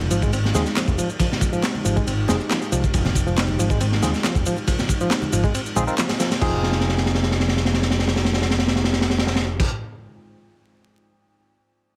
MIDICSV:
0, 0, Header, 1, 6, 480
1, 0, Start_track
1, 0, Key_signature, -4, "minor"
1, 0, Tempo, 434783
1, 1324, Time_signature, 4, 2, 24, 8
1, 13204, End_track
2, 0, Start_track
2, 0, Title_t, "Ambient pad"
2, 0, Program_c, 0, 92
2, 0, Note_on_c, 0, 56, 83
2, 0, Note_on_c, 0, 63, 73
2, 0, Note_on_c, 0, 65, 73
2, 0, Note_on_c, 0, 67, 93
2, 7042, Note_off_c, 0, 63, 0
2, 7042, Note_off_c, 0, 65, 0
2, 7043, Note_off_c, 0, 56, 0
2, 7063, Note_off_c, 0, 67, 0
2, 7081, Note_on_c, 0, 65, 73
2, 7082, Note_on_c, 0, 63, 74
2, 7083, Note_on_c, 0, 72, 86
2, 7084, Note_on_c, 0, 56, 81
2, 10643, Note_off_c, 0, 63, 0
2, 10643, Note_off_c, 0, 65, 0
2, 10644, Note_off_c, 0, 56, 0
2, 10644, Note_off_c, 0, 72, 0
2, 13204, End_track
3, 0, Start_track
3, 0, Title_t, "Tine electric piano"
3, 0, Program_c, 1, 4
3, 601, Note_on_c, 1, 60, 80
3, 601, Note_on_c, 1, 65, 75
3, 602, Note_on_c, 1, 63, 70
3, 602, Note_on_c, 1, 68, 88
3, 676, Note_off_c, 1, 60, 0
3, 676, Note_off_c, 1, 65, 0
3, 677, Note_off_c, 1, 63, 0
3, 677, Note_off_c, 1, 68, 0
3, 2523, Note_on_c, 1, 60, 81
3, 2523, Note_on_c, 1, 63, 74
3, 2523, Note_on_c, 1, 65, 69
3, 2523, Note_on_c, 1, 68, 87
3, 2597, Note_off_c, 1, 60, 0
3, 2597, Note_off_c, 1, 63, 0
3, 2597, Note_off_c, 1, 65, 0
3, 2597, Note_off_c, 1, 68, 0
3, 4444, Note_on_c, 1, 60, 78
3, 4444, Note_on_c, 1, 63, 72
3, 4444, Note_on_c, 1, 65, 71
3, 4444, Note_on_c, 1, 68, 87
3, 4518, Note_off_c, 1, 60, 0
3, 4518, Note_off_c, 1, 63, 0
3, 4518, Note_off_c, 1, 65, 0
3, 4518, Note_off_c, 1, 68, 0
3, 6361, Note_on_c, 1, 63, 81
3, 6361, Note_on_c, 1, 65, 89
3, 6362, Note_on_c, 1, 60, 98
3, 6362, Note_on_c, 1, 68, 97
3, 6436, Note_off_c, 1, 63, 0
3, 6436, Note_off_c, 1, 65, 0
3, 6437, Note_off_c, 1, 60, 0
3, 6437, Note_off_c, 1, 68, 0
3, 6482, Note_on_c, 1, 70, 94
3, 6483, Note_on_c, 1, 60, 85
3, 6483, Note_on_c, 1, 63, 76
3, 6483, Note_on_c, 1, 65, 77
3, 6555, Note_off_c, 1, 60, 0
3, 6555, Note_off_c, 1, 63, 0
3, 6555, Note_off_c, 1, 65, 0
3, 6555, Note_off_c, 1, 70, 0
3, 7080, Note_on_c, 1, 63, 83
3, 7080, Note_on_c, 1, 65, 80
3, 7081, Note_on_c, 1, 60, 88
3, 7081, Note_on_c, 1, 68, 101
3, 10642, Note_off_c, 1, 65, 0
3, 10643, Note_off_c, 1, 60, 0
3, 10643, Note_off_c, 1, 63, 0
3, 10643, Note_off_c, 1, 68, 0
3, 13204, End_track
4, 0, Start_track
4, 0, Title_t, "Reed electric piano"
4, 0, Program_c, 2, 4
4, 123, Note_on_c, 2, 53, 106
4, 241, Note_off_c, 2, 53, 0
4, 248, Note_on_c, 2, 56, 101
4, 339, Note_off_c, 2, 56, 0
4, 366, Note_on_c, 2, 60, 85
4, 423, Note_off_c, 2, 60, 0
4, 606, Note_on_c, 2, 56, 96
4, 833, Note_off_c, 2, 56, 0
4, 844, Note_on_c, 2, 53, 80
4, 961, Note_off_c, 2, 53, 0
4, 1083, Note_on_c, 2, 53, 101
4, 1200, Note_off_c, 2, 53, 0
4, 1325, Note_on_c, 2, 53, 82
4, 1672, Note_off_c, 2, 53, 0
4, 1685, Note_on_c, 2, 53, 78
4, 1797, Note_off_c, 2, 53, 0
4, 2043, Note_on_c, 2, 53, 106
4, 2160, Note_off_c, 2, 53, 0
4, 2167, Note_on_c, 2, 56, 98
4, 2259, Note_off_c, 2, 56, 0
4, 2285, Note_on_c, 2, 60, 83
4, 2342, Note_off_c, 2, 60, 0
4, 2523, Note_on_c, 2, 56, 96
4, 2752, Note_off_c, 2, 56, 0
4, 2762, Note_on_c, 2, 53, 83
4, 2880, Note_off_c, 2, 53, 0
4, 3004, Note_on_c, 2, 53, 103
4, 3121, Note_off_c, 2, 53, 0
4, 3243, Note_on_c, 2, 53, 82
4, 3594, Note_off_c, 2, 53, 0
4, 3608, Note_on_c, 2, 53, 82
4, 3718, Note_off_c, 2, 53, 0
4, 3964, Note_on_c, 2, 53, 109
4, 4081, Note_off_c, 2, 53, 0
4, 4087, Note_on_c, 2, 56, 97
4, 4179, Note_off_c, 2, 56, 0
4, 4205, Note_on_c, 2, 60, 87
4, 4262, Note_off_c, 2, 60, 0
4, 4444, Note_on_c, 2, 56, 101
4, 4672, Note_off_c, 2, 56, 0
4, 4683, Note_on_c, 2, 53, 86
4, 4801, Note_off_c, 2, 53, 0
4, 4926, Note_on_c, 2, 53, 102
4, 5042, Note_off_c, 2, 53, 0
4, 5165, Note_on_c, 2, 53, 80
4, 5515, Note_off_c, 2, 53, 0
4, 5527, Note_on_c, 2, 53, 86
4, 5638, Note_off_c, 2, 53, 0
4, 5883, Note_on_c, 2, 53, 105
4, 6000, Note_off_c, 2, 53, 0
4, 6006, Note_on_c, 2, 56, 107
4, 6098, Note_off_c, 2, 56, 0
4, 6123, Note_on_c, 2, 60, 90
4, 6182, Note_off_c, 2, 60, 0
4, 6364, Note_on_c, 2, 56, 95
4, 6593, Note_off_c, 2, 56, 0
4, 6605, Note_on_c, 2, 53, 88
4, 6722, Note_off_c, 2, 53, 0
4, 6843, Note_on_c, 2, 53, 103
4, 6961, Note_off_c, 2, 53, 0
4, 7080, Note_on_c, 2, 53, 90
4, 10643, Note_off_c, 2, 53, 0
4, 13204, End_track
5, 0, Start_track
5, 0, Title_t, "Picked electric bass"
5, 0, Program_c, 3, 34
5, 123, Note_on_c, 3, 32, 90
5, 568, Note_off_c, 3, 32, 0
5, 602, Note_on_c, 3, 39, 81
5, 703, Note_off_c, 3, 39, 0
5, 969, Note_on_c, 3, 29, 83
5, 1063, Note_off_c, 3, 29, 0
5, 2045, Note_on_c, 3, 32, 86
5, 2241, Note_off_c, 3, 32, 0
5, 2284, Note_on_c, 3, 32, 93
5, 2480, Note_off_c, 3, 32, 0
5, 2525, Note_on_c, 3, 29, 103
5, 2625, Note_off_c, 3, 29, 0
5, 3005, Note_on_c, 3, 36, 84
5, 3105, Note_off_c, 3, 36, 0
5, 3247, Note_on_c, 3, 29, 96
5, 3931, Note_off_c, 3, 29, 0
5, 3963, Note_on_c, 3, 32, 84
5, 4409, Note_off_c, 3, 32, 0
5, 4443, Note_on_c, 3, 39, 82
5, 4544, Note_off_c, 3, 39, 0
5, 4806, Note_on_c, 3, 29, 83
5, 4902, Note_off_c, 3, 29, 0
5, 5883, Note_on_c, 3, 32, 87
5, 6080, Note_off_c, 3, 32, 0
5, 6364, Note_on_c, 3, 34, 91
5, 6464, Note_off_c, 3, 34, 0
5, 7083, Note_on_c, 3, 29, 94
5, 10644, Note_off_c, 3, 29, 0
5, 13204, End_track
6, 0, Start_track
6, 0, Title_t, "Drums"
6, 13, Note_on_c, 9, 62, 80
6, 13, Note_on_c, 9, 64, 77
6, 14, Note_on_c, 9, 63, 68
6, 117, Note_on_c, 9, 51, 69
6, 122, Note_on_c, 9, 82, 73
6, 123, Note_off_c, 9, 64, 0
6, 124, Note_off_c, 9, 62, 0
6, 124, Note_off_c, 9, 63, 0
6, 228, Note_off_c, 9, 51, 0
6, 232, Note_off_c, 9, 82, 0
6, 245, Note_on_c, 9, 82, 31
6, 247, Note_on_c, 9, 36, 91
6, 355, Note_off_c, 9, 82, 0
6, 357, Note_off_c, 9, 36, 0
6, 363, Note_on_c, 9, 82, 40
6, 365, Note_on_c, 9, 51, 83
6, 473, Note_off_c, 9, 82, 0
6, 475, Note_off_c, 9, 51, 0
6, 486, Note_on_c, 9, 62, 52
6, 499, Note_on_c, 9, 38, 53
6, 597, Note_off_c, 9, 62, 0
6, 601, Note_on_c, 9, 64, 89
6, 603, Note_off_c, 9, 38, 0
6, 603, Note_on_c, 9, 38, 62
6, 603, Note_on_c, 9, 82, 72
6, 604, Note_on_c, 9, 63, 94
6, 607, Note_on_c, 9, 51, 69
6, 712, Note_off_c, 9, 64, 0
6, 713, Note_off_c, 9, 38, 0
6, 714, Note_off_c, 9, 63, 0
6, 714, Note_off_c, 9, 82, 0
6, 717, Note_off_c, 9, 51, 0
6, 726, Note_on_c, 9, 38, 40
6, 728, Note_on_c, 9, 82, 31
6, 837, Note_off_c, 9, 38, 0
6, 838, Note_off_c, 9, 82, 0
6, 843, Note_on_c, 9, 62, 73
6, 844, Note_on_c, 9, 51, 90
6, 845, Note_on_c, 9, 39, 107
6, 845, Note_on_c, 9, 82, 39
6, 849, Note_on_c, 9, 38, 111
6, 953, Note_off_c, 9, 62, 0
6, 954, Note_off_c, 9, 51, 0
6, 955, Note_off_c, 9, 39, 0
6, 955, Note_off_c, 9, 82, 0
6, 959, Note_off_c, 9, 38, 0
6, 968, Note_on_c, 9, 36, 91
6, 969, Note_on_c, 9, 82, 29
6, 1079, Note_off_c, 9, 36, 0
6, 1079, Note_off_c, 9, 82, 0
6, 1087, Note_on_c, 9, 82, 73
6, 1088, Note_on_c, 9, 51, 71
6, 1197, Note_off_c, 9, 82, 0
6, 1199, Note_off_c, 9, 51, 0
6, 1209, Note_on_c, 9, 82, 31
6, 1319, Note_off_c, 9, 82, 0
6, 1320, Note_on_c, 9, 36, 111
6, 1320, Note_on_c, 9, 51, 99
6, 1326, Note_on_c, 9, 63, 86
6, 1326, Note_on_c, 9, 82, 39
6, 1327, Note_on_c, 9, 62, 54
6, 1430, Note_off_c, 9, 36, 0
6, 1430, Note_off_c, 9, 51, 0
6, 1436, Note_off_c, 9, 82, 0
6, 1437, Note_off_c, 9, 63, 0
6, 1438, Note_off_c, 9, 62, 0
6, 1449, Note_on_c, 9, 64, 69
6, 1459, Note_on_c, 9, 38, 58
6, 1559, Note_off_c, 9, 64, 0
6, 1559, Note_on_c, 9, 36, 105
6, 1559, Note_on_c, 9, 51, 68
6, 1566, Note_on_c, 9, 82, 71
6, 1569, Note_off_c, 9, 38, 0
6, 1669, Note_off_c, 9, 36, 0
6, 1669, Note_off_c, 9, 51, 0
6, 1677, Note_off_c, 9, 82, 0
6, 1690, Note_on_c, 9, 62, 73
6, 1690, Note_on_c, 9, 82, 32
6, 1800, Note_off_c, 9, 62, 0
6, 1800, Note_off_c, 9, 82, 0
6, 1802, Note_on_c, 9, 38, 117
6, 1804, Note_on_c, 9, 51, 93
6, 1807, Note_on_c, 9, 39, 94
6, 1807, Note_on_c, 9, 82, 38
6, 1912, Note_off_c, 9, 38, 0
6, 1915, Note_off_c, 9, 51, 0
6, 1917, Note_off_c, 9, 39, 0
6, 1917, Note_off_c, 9, 82, 0
6, 1930, Note_on_c, 9, 64, 73
6, 1935, Note_on_c, 9, 63, 70
6, 2040, Note_off_c, 9, 64, 0
6, 2046, Note_off_c, 9, 63, 0
6, 2047, Note_on_c, 9, 51, 70
6, 2048, Note_on_c, 9, 82, 72
6, 2157, Note_off_c, 9, 51, 0
6, 2158, Note_off_c, 9, 82, 0
6, 2169, Note_on_c, 9, 62, 60
6, 2170, Note_on_c, 9, 82, 29
6, 2175, Note_on_c, 9, 36, 91
6, 2280, Note_off_c, 9, 62, 0
6, 2281, Note_off_c, 9, 82, 0
6, 2285, Note_off_c, 9, 36, 0
6, 2287, Note_on_c, 9, 82, 41
6, 2291, Note_on_c, 9, 51, 84
6, 2398, Note_off_c, 9, 82, 0
6, 2401, Note_off_c, 9, 51, 0
6, 2517, Note_on_c, 9, 62, 78
6, 2518, Note_on_c, 9, 63, 93
6, 2521, Note_on_c, 9, 64, 81
6, 2525, Note_on_c, 9, 38, 113
6, 2528, Note_on_c, 9, 82, 77
6, 2532, Note_on_c, 9, 51, 77
6, 2627, Note_off_c, 9, 62, 0
6, 2629, Note_off_c, 9, 63, 0
6, 2632, Note_off_c, 9, 64, 0
6, 2635, Note_off_c, 9, 38, 0
6, 2638, Note_off_c, 9, 82, 0
6, 2642, Note_off_c, 9, 51, 0
6, 2651, Note_on_c, 9, 82, 32
6, 2761, Note_off_c, 9, 82, 0
6, 2765, Note_on_c, 9, 51, 85
6, 2767, Note_on_c, 9, 38, 107
6, 2767, Note_on_c, 9, 39, 107
6, 2767, Note_on_c, 9, 82, 39
6, 2875, Note_off_c, 9, 51, 0
6, 2877, Note_off_c, 9, 38, 0
6, 2878, Note_off_c, 9, 39, 0
6, 2878, Note_off_c, 9, 82, 0
6, 2891, Note_on_c, 9, 82, 28
6, 3001, Note_off_c, 9, 82, 0
6, 3005, Note_on_c, 9, 51, 64
6, 3007, Note_on_c, 9, 82, 70
6, 3008, Note_on_c, 9, 62, 51
6, 3115, Note_off_c, 9, 51, 0
6, 3117, Note_off_c, 9, 82, 0
6, 3119, Note_off_c, 9, 62, 0
6, 3132, Note_on_c, 9, 82, 29
6, 3134, Note_on_c, 9, 36, 99
6, 3242, Note_off_c, 9, 82, 0
6, 3242, Note_on_c, 9, 51, 90
6, 3244, Note_off_c, 9, 36, 0
6, 3245, Note_on_c, 9, 63, 85
6, 3247, Note_on_c, 9, 36, 113
6, 3247, Note_on_c, 9, 82, 42
6, 3352, Note_off_c, 9, 51, 0
6, 3355, Note_off_c, 9, 63, 0
6, 3357, Note_off_c, 9, 36, 0
6, 3357, Note_off_c, 9, 82, 0
6, 3366, Note_on_c, 9, 38, 52
6, 3366, Note_on_c, 9, 64, 77
6, 3374, Note_on_c, 9, 62, 74
6, 3476, Note_off_c, 9, 38, 0
6, 3476, Note_off_c, 9, 64, 0
6, 3482, Note_on_c, 9, 36, 97
6, 3484, Note_on_c, 9, 51, 72
6, 3485, Note_off_c, 9, 62, 0
6, 3488, Note_on_c, 9, 82, 75
6, 3593, Note_off_c, 9, 36, 0
6, 3595, Note_off_c, 9, 51, 0
6, 3599, Note_off_c, 9, 82, 0
6, 3611, Note_on_c, 9, 82, 31
6, 3721, Note_off_c, 9, 82, 0
6, 3725, Note_on_c, 9, 51, 90
6, 3728, Note_on_c, 9, 38, 123
6, 3729, Note_on_c, 9, 39, 98
6, 3729, Note_on_c, 9, 82, 41
6, 3835, Note_off_c, 9, 51, 0
6, 3839, Note_off_c, 9, 38, 0
6, 3839, Note_off_c, 9, 39, 0
6, 3839, Note_off_c, 9, 82, 0
6, 3844, Note_on_c, 9, 64, 88
6, 3848, Note_on_c, 9, 62, 59
6, 3858, Note_on_c, 9, 63, 66
6, 3954, Note_off_c, 9, 64, 0
6, 3958, Note_off_c, 9, 62, 0
6, 3968, Note_off_c, 9, 63, 0
6, 3968, Note_on_c, 9, 82, 71
6, 3971, Note_on_c, 9, 51, 79
6, 4078, Note_off_c, 9, 82, 0
6, 4082, Note_off_c, 9, 51, 0
6, 4086, Note_on_c, 9, 36, 91
6, 4091, Note_on_c, 9, 82, 31
6, 4196, Note_off_c, 9, 36, 0
6, 4200, Note_on_c, 9, 62, 88
6, 4202, Note_off_c, 9, 82, 0
6, 4203, Note_on_c, 9, 51, 85
6, 4208, Note_on_c, 9, 82, 41
6, 4310, Note_off_c, 9, 62, 0
6, 4313, Note_off_c, 9, 51, 0
6, 4318, Note_off_c, 9, 82, 0
6, 4328, Note_on_c, 9, 38, 47
6, 4439, Note_off_c, 9, 38, 0
6, 4445, Note_on_c, 9, 38, 60
6, 4445, Note_on_c, 9, 51, 75
6, 4445, Note_on_c, 9, 63, 83
6, 4448, Note_on_c, 9, 82, 73
6, 4449, Note_on_c, 9, 64, 89
6, 4555, Note_off_c, 9, 38, 0
6, 4556, Note_off_c, 9, 51, 0
6, 4556, Note_off_c, 9, 63, 0
6, 4559, Note_off_c, 9, 64, 0
6, 4559, Note_off_c, 9, 82, 0
6, 4571, Note_on_c, 9, 82, 31
6, 4576, Note_on_c, 9, 38, 37
6, 4677, Note_on_c, 9, 62, 53
6, 4680, Note_off_c, 9, 38, 0
6, 4680, Note_on_c, 9, 38, 116
6, 4682, Note_off_c, 9, 82, 0
6, 4683, Note_on_c, 9, 51, 84
6, 4686, Note_on_c, 9, 39, 106
6, 4686, Note_on_c, 9, 82, 43
6, 4787, Note_off_c, 9, 62, 0
6, 4790, Note_off_c, 9, 38, 0
6, 4794, Note_off_c, 9, 51, 0
6, 4797, Note_off_c, 9, 39, 0
6, 4797, Note_off_c, 9, 82, 0
6, 4806, Note_on_c, 9, 36, 102
6, 4808, Note_on_c, 9, 82, 29
6, 4916, Note_off_c, 9, 36, 0
6, 4918, Note_off_c, 9, 82, 0
6, 4923, Note_on_c, 9, 82, 71
6, 4930, Note_on_c, 9, 51, 66
6, 5033, Note_off_c, 9, 82, 0
6, 5040, Note_off_c, 9, 51, 0
6, 5041, Note_on_c, 9, 62, 78
6, 5046, Note_on_c, 9, 82, 31
6, 5152, Note_off_c, 9, 62, 0
6, 5155, Note_on_c, 9, 63, 82
6, 5156, Note_off_c, 9, 82, 0
6, 5162, Note_on_c, 9, 36, 114
6, 5163, Note_on_c, 9, 51, 98
6, 5163, Note_on_c, 9, 82, 43
6, 5265, Note_off_c, 9, 63, 0
6, 5273, Note_off_c, 9, 36, 0
6, 5273, Note_off_c, 9, 51, 0
6, 5273, Note_off_c, 9, 82, 0
6, 5286, Note_on_c, 9, 82, 32
6, 5287, Note_on_c, 9, 38, 50
6, 5294, Note_on_c, 9, 64, 86
6, 5396, Note_off_c, 9, 82, 0
6, 5397, Note_on_c, 9, 51, 69
6, 5398, Note_off_c, 9, 38, 0
6, 5398, Note_on_c, 9, 36, 93
6, 5403, Note_on_c, 9, 82, 75
6, 5405, Note_off_c, 9, 64, 0
6, 5508, Note_off_c, 9, 51, 0
6, 5509, Note_off_c, 9, 36, 0
6, 5514, Note_off_c, 9, 82, 0
6, 5526, Note_on_c, 9, 82, 34
6, 5529, Note_on_c, 9, 62, 52
6, 5635, Note_on_c, 9, 38, 124
6, 5637, Note_off_c, 9, 82, 0
6, 5640, Note_off_c, 9, 62, 0
6, 5643, Note_on_c, 9, 39, 99
6, 5643, Note_on_c, 9, 82, 43
6, 5645, Note_on_c, 9, 51, 87
6, 5746, Note_off_c, 9, 38, 0
6, 5753, Note_off_c, 9, 39, 0
6, 5753, Note_off_c, 9, 82, 0
6, 5755, Note_off_c, 9, 51, 0
6, 5761, Note_on_c, 9, 64, 90
6, 5763, Note_on_c, 9, 63, 63
6, 5768, Note_on_c, 9, 82, 32
6, 5872, Note_off_c, 9, 64, 0
6, 5873, Note_off_c, 9, 63, 0
6, 5878, Note_off_c, 9, 82, 0
6, 5879, Note_on_c, 9, 62, 88
6, 5883, Note_on_c, 9, 82, 76
6, 5884, Note_on_c, 9, 51, 76
6, 5989, Note_off_c, 9, 62, 0
6, 5993, Note_off_c, 9, 82, 0
6, 5994, Note_off_c, 9, 51, 0
6, 6002, Note_on_c, 9, 36, 91
6, 6007, Note_on_c, 9, 82, 31
6, 6112, Note_off_c, 9, 36, 0
6, 6117, Note_off_c, 9, 82, 0
6, 6123, Note_on_c, 9, 51, 88
6, 6124, Note_on_c, 9, 82, 44
6, 6234, Note_off_c, 9, 51, 0
6, 6234, Note_off_c, 9, 82, 0
6, 6248, Note_on_c, 9, 82, 32
6, 6358, Note_off_c, 9, 82, 0
6, 6362, Note_on_c, 9, 82, 81
6, 6363, Note_on_c, 9, 63, 81
6, 6364, Note_on_c, 9, 62, 57
6, 6370, Note_on_c, 9, 64, 94
6, 6473, Note_off_c, 9, 82, 0
6, 6474, Note_off_c, 9, 62, 0
6, 6474, Note_off_c, 9, 63, 0
6, 6481, Note_off_c, 9, 64, 0
6, 6487, Note_on_c, 9, 82, 33
6, 6597, Note_off_c, 9, 82, 0
6, 6603, Note_on_c, 9, 39, 110
6, 6603, Note_on_c, 9, 51, 84
6, 6603, Note_on_c, 9, 82, 43
6, 6605, Note_on_c, 9, 38, 101
6, 6713, Note_off_c, 9, 39, 0
6, 6713, Note_off_c, 9, 51, 0
6, 6713, Note_off_c, 9, 82, 0
6, 6715, Note_off_c, 9, 38, 0
6, 6725, Note_on_c, 9, 38, 101
6, 6725, Note_on_c, 9, 51, 80
6, 6726, Note_on_c, 9, 82, 28
6, 6730, Note_on_c, 9, 62, 76
6, 6835, Note_off_c, 9, 38, 0
6, 6836, Note_off_c, 9, 51, 0
6, 6836, Note_off_c, 9, 82, 0
6, 6840, Note_off_c, 9, 62, 0
6, 6844, Note_on_c, 9, 51, 77
6, 6844, Note_on_c, 9, 82, 78
6, 6849, Note_on_c, 9, 38, 104
6, 6954, Note_off_c, 9, 82, 0
6, 6955, Note_off_c, 9, 51, 0
6, 6960, Note_off_c, 9, 38, 0
6, 6966, Note_on_c, 9, 82, 34
6, 6970, Note_on_c, 9, 38, 104
6, 6973, Note_on_c, 9, 51, 85
6, 7076, Note_off_c, 9, 82, 0
6, 7080, Note_off_c, 9, 38, 0
6, 7082, Note_on_c, 9, 36, 111
6, 7083, Note_off_c, 9, 51, 0
6, 7083, Note_on_c, 9, 49, 105
6, 7193, Note_off_c, 9, 36, 0
6, 7194, Note_off_c, 9, 49, 0
6, 7323, Note_on_c, 9, 38, 51
6, 7420, Note_off_c, 9, 38, 0
6, 7420, Note_on_c, 9, 38, 49
6, 7512, Note_off_c, 9, 38, 0
6, 7512, Note_on_c, 9, 38, 53
6, 7606, Note_off_c, 9, 38, 0
6, 7606, Note_on_c, 9, 38, 57
6, 7701, Note_off_c, 9, 38, 0
6, 7701, Note_on_c, 9, 38, 56
6, 7794, Note_off_c, 9, 38, 0
6, 7794, Note_on_c, 9, 38, 61
6, 7889, Note_off_c, 9, 38, 0
6, 7889, Note_on_c, 9, 38, 62
6, 7981, Note_off_c, 9, 38, 0
6, 7981, Note_on_c, 9, 38, 58
6, 8074, Note_off_c, 9, 38, 0
6, 8074, Note_on_c, 9, 38, 64
6, 8170, Note_off_c, 9, 38, 0
6, 8170, Note_on_c, 9, 38, 65
6, 8261, Note_off_c, 9, 38, 0
6, 8261, Note_on_c, 9, 38, 69
6, 8356, Note_off_c, 9, 38, 0
6, 8356, Note_on_c, 9, 38, 68
6, 8448, Note_off_c, 9, 38, 0
6, 8448, Note_on_c, 9, 38, 71
6, 8541, Note_off_c, 9, 38, 0
6, 8541, Note_on_c, 9, 38, 70
6, 8636, Note_off_c, 9, 38, 0
6, 8636, Note_on_c, 9, 38, 73
6, 8727, Note_off_c, 9, 38, 0
6, 8727, Note_on_c, 9, 38, 73
6, 8822, Note_off_c, 9, 38, 0
6, 8822, Note_on_c, 9, 38, 70
6, 8916, Note_off_c, 9, 38, 0
6, 8916, Note_on_c, 9, 38, 77
6, 9010, Note_off_c, 9, 38, 0
6, 9010, Note_on_c, 9, 38, 81
6, 9107, Note_off_c, 9, 38, 0
6, 9107, Note_on_c, 9, 38, 81
6, 9201, Note_off_c, 9, 38, 0
6, 9201, Note_on_c, 9, 38, 87
6, 9294, Note_off_c, 9, 38, 0
6, 9294, Note_on_c, 9, 38, 80
6, 9389, Note_off_c, 9, 38, 0
6, 9389, Note_on_c, 9, 38, 84
6, 9481, Note_off_c, 9, 38, 0
6, 9481, Note_on_c, 9, 38, 89
6, 9577, Note_off_c, 9, 38, 0
6, 9577, Note_on_c, 9, 38, 90
6, 9670, Note_off_c, 9, 38, 0
6, 9670, Note_on_c, 9, 38, 91
6, 9763, Note_off_c, 9, 38, 0
6, 9763, Note_on_c, 9, 38, 91
6, 9858, Note_off_c, 9, 38, 0
6, 9858, Note_on_c, 9, 38, 93
6, 9951, Note_off_c, 9, 38, 0
6, 9951, Note_on_c, 9, 38, 92
6, 10046, Note_off_c, 9, 38, 0
6, 10046, Note_on_c, 9, 38, 96
6, 10139, Note_off_c, 9, 38, 0
6, 10139, Note_on_c, 9, 38, 101
6, 10233, Note_off_c, 9, 38, 0
6, 10233, Note_on_c, 9, 38, 99
6, 10328, Note_off_c, 9, 38, 0
6, 10328, Note_on_c, 9, 38, 104
6, 10439, Note_off_c, 9, 38, 0
6, 10594, Note_on_c, 9, 49, 103
6, 10595, Note_on_c, 9, 36, 116
6, 10704, Note_off_c, 9, 49, 0
6, 10705, Note_off_c, 9, 36, 0
6, 13204, End_track
0, 0, End_of_file